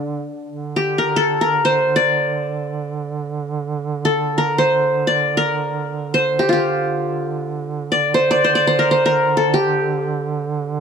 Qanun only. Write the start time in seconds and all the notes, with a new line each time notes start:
Already playing: D4
0.76 G4
0.98 A#4
1.16 A4
1.41 A#4
1.65 C5
1.96 D5
4.05 A4
4.38 A#4
4.58 C5
5.07 D5
5.37 A#4
6.14 C5
6.39 G4
6.49 F4 G4
7.92 D5
8.14 C5
8.31 D5
8.44 C5
8.55 D5
8.67 C5
8.79 A#4
8.91 C5
9.06 A#4
9.37 A4
9.54 G4